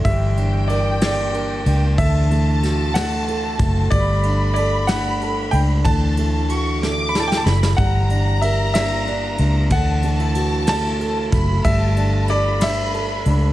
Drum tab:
RD |x-x-x-x-x-x-|x-x-x-x-x-x-|x-x-x-x-x-x-|x-x-x-------|
SD |------o-----|----o-o-----|------o-----|------o-oooo|
BD |o-----------|o---------o-|o-----------|o-----------|

RD |x-x-x-x-x-x-|x-x-x-x-x-x-|x-x-x-x-x-x-|
SD |------o-----|------o-----|------o-----|
BD |o-----------|o---------o-|o-----------|